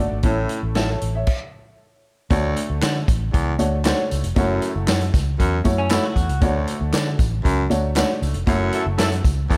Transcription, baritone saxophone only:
0.24 0.61 A2 medium
2.31 2.67 D2 medium
3.33 3.54 E2 medium
4.37 4.73 F#2 medium
5.39 5.60 F#2 medium
6.42 6.78 D2 medium
7.44 7.65 F#2 medium
8.47 8.83 F#2 medium
9.49 9.57 E2 medium

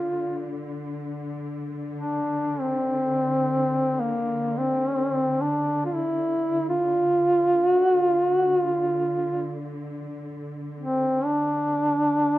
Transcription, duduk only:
0.00 0.53 F4 medium
1.94 2.62 D4 medium
2.60 4.01 C4 medium
4.00 4.59 A#3 medium
4.58 5.43 C4 medium
5.41 5.85 D4 medium
5.85 5.96 F4 soft
5.94 6.68 E4 medium
6.68 7.71 F4 medium
7.71 7.99 F#4 medium
7.99 8.30 F4 medium
8.30 8.58 F#4 medium
8.58 9.60 F4 medium
10.80 11.26 C4 medium
11.25 12.38 D4 medium

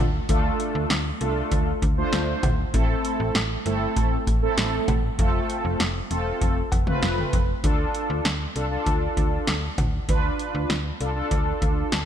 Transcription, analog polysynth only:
0.29 0.89 A3 medium
0.29 0.89 D4 medium
0.29 0.89 F4 medium
0.29 0.89 A4 loud
1.21 1.71 A3 medium
1.21 1.71 D4 medium
1.21 1.71 F4 medium
1.21 1.71 A4 loud
1.98 2.48 A3 medium
1.98 2.48 D4 medium
1.98 2.48 F4 medium
1.98 2.48 C5 loud
2.74 3.34 A3 medium
2.74 3.34 C4 medium
2.74 3.34 E4 medium
2.74 3.34 A4 loud
3.66 4.16 A3 medium
3.66 4.16 C4 medium
3.66 4.16 E4 medium
3.66 4.16 A4 loud
4.42 4.93 A3 medium
4.42 4.93 C4 medium
4.42 4.93 E4 medium
4.42 4.93 A4 loud
5.19 5.79 A3 medium
5.19 5.79 C4 medium
5.19 5.79 F4 medium
5.19 5.79 A4 loud
6.11 6.61 A3 medium
6.11 6.61 C4 medium
6.11 6.61 F4 medium
6.11 6.61 A4 medium
6.87 7.37 A3 medium
6.87 7.37 C4 medium
6.87 7.37 F4 medium
6.87 7.37 B4 loud
7.64 8.24 D4 medium
7.64 8.24 F4 medium
7.64 8.24 A4 loud
8.56 8.66 D4 medium
8.56 8.66 F4 medium
8.56 8.66 A4 loud
8.71 9.51 D4 medium
8.71 9.51 F4 medium
8.71 9.51 A4 medium
10.09 10.69 D4 medium
10.09 10.69 F4 medium
10.09 10.69 B4 loud
11.01 11.11 D4 medium
11.01 11.11 F4 medium
11.01 11.11 A4 loud
11.16 11.96 D4 medium
11.16 11.96 F4 medium
11.16 11.96 A4 loud

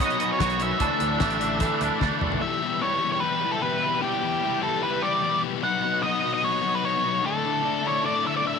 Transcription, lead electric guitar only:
0.00 0.31 D#5 medium
0.32 0.59 C#5 loud
0.62 1.98 E5 medium
2.42 2.83 E5 loud
2.82 3.11 C#5 medium
3.12 3.20 C#5 medium
3.20 3.51 B4 medium
3.52 3.62 A4 medium
3.62 4.02 B4 medium
4.02 4.63 G4 loud
4.63 4.83 A4 medium
4.83 5.04 B4 loud
5.03 5.40 D5 loud
5.63 6.05 F#5 loud
6.03 6.33 D#5 medium
6.34 6.44 D#5 medium
6.44 6.75 C#5 loud
6.75 6.84 B4 loud
6.85 7.26 C#5 loud
7.26 7.87 A4 loud
7.87 8.05 C#5 medium
8.06 8.26 D5 loud
8.27 8.36 E5 medium
8.37 8.46 D5 loud
8.47 8.59 E5 loud

